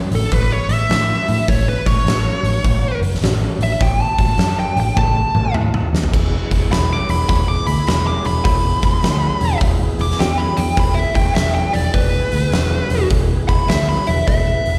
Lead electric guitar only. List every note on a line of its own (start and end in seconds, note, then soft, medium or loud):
0.15 0.33 A4 loud
0.33 0.52 B4 loud
0.52 0.73 C#5 medium
0.73 1.47 E5 medium
1.49 1.68 C#5 medium
1.69 1.86 B4 medium
1.86 3.00 C#5 loud
3.63 3.81 E5 medium
3.82 4.02 G5 medium
4.02 4.58 A5 medium
4.60 4.78 G5 medium
4.80 4.98 G5 medium
4.98 5.54 A5 loud
6.72 6.93 B5 loud
6.93 7.10 D6 medium
7.11 7.28 B5 medium
7.30 7.48 B5 loud
7.48 7.67 D6 medium
7.67 7.86 B5 loud
7.88 8.07 B5 loud
8.07 8.26 D6 medium
8.26 8.44 B5 medium
8.45 9.58 B5 loud
10.01 10.20 D6 loud
10.20 10.39 G5 loud
10.38 10.58 B5 medium
10.57 10.77 G5 loud
10.80 10.98 B5 medium
10.95 11.15 E5 medium
11.16 11.35 G5 medium
11.35 11.54 E5 medium
11.55 11.74 G5 loud
11.73 11.94 D5 loud
11.94 13.07 B4 loud
13.49 13.68 B5 loud
13.69 13.88 E5 medium
13.89 14.08 B5 loud
14.07 14.27 E5 medium
14.28 14.79 E5 loud